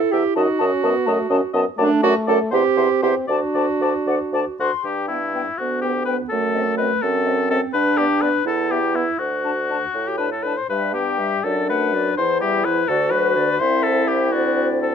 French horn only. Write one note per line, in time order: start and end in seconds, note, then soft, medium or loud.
0.00 0.38 E4 medium
0.37 0.62 D#4 medium
0.60 0.85 C#4 medium
0.84 1.08 B3 medium
1.07 1.30 A3 medium
1.30 1.41 C#4 medium
1.54 1.65 B3 medium
1.78 2.54 A3 medium
2.52 3.29 C4 medium
3.29 4.44 D4 medium
5.10 5.19 B3 soft
5.35 5.44 B3 soft
5.84 5.92 B3 soft
6.09 6.17 B3 soft
6.56 6.64 C4 soft
6.79 6.88 C4 soft
7.27 7.35 C4 soft
7.51 7.59 C4 medium
7.98 8.07 B3 soft
8.22 8.30 B3 soft
8.71 8.79 B3 soft
8.95 9.03 B3 soft
9.44 9.53 D4 soft
9.70 9.79 D4 soft
10.19 10.28 D4 soft
10.45 10.54 D4 soft
10.70 10.97 G3 soft
10.95 11.21 B3 soft
11.19 11.45 G3 soft
11.45 11.71 F#3 soft
11.70 11.95 A3 soft
11.93 12.18 F#3 soft
12.18 12.43 E3 soft
12.41 12.66 G3 soft
12.65 12.88 E3 soft
12.88 13.14 D3 soft
13.13 13.37 F#3 soft
13.36 13.60 D3 soft
13.61 14.30 C4 medium
14.33 14.95 C4 soft